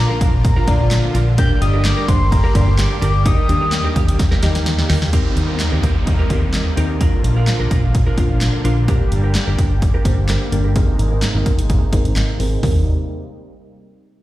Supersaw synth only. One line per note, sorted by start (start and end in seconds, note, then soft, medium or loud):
0.00 3.22 D3 medium
0.00 1.36 F3 medium
0.00 1.34 A#3 medium
0.00 1.36 F4 medium
1.38 3.24 G3 medium
1.38 3.24 A#3 medium
1.38 5.09 G4 medium
3.26 5.11 D#3 medium
3.26 5.11 G3 medium
3.26 5.11 A#3 medium
5.13 6.99 C3 medium
5.13 6.99 G3 medium
5.13 6.99 A#3 medium
5.13 6.99 D#4 medium
7.01 10.72 D3 medium
7.01 8.86 F3 medium
7.01 12.59 A#3 medium
7.01 8.86 F4 medium
8.88 10.74 G3 medium
8.88 10.74 G4 medium
10.76 12.61 C3 medium
10.76 12.61 G#3 medium
10.76 12.61 D#4 medium
12.63 12.85 C3 medium
12.63 12.85 G3 medium
12.63 12.85 A#3 medium
12.63 12.85 D#4 medium